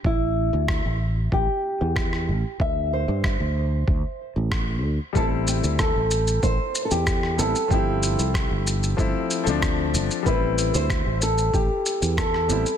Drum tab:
SH |----------------|----------------|x-xxx-xxx-xxx-xx|x-xxx-xxx-xxx-xx|
SD |----r-------rr--|----r-------r---|----r-------rr--|----r-------r---|
BD |o---o---o---o---|o---o---o---o---|o---o---o---o---|o---o---o---o---|

SH |x-xxx-xxx-xxx-xx|
SD |----r-------rr--|
BD |o---o---o---o---|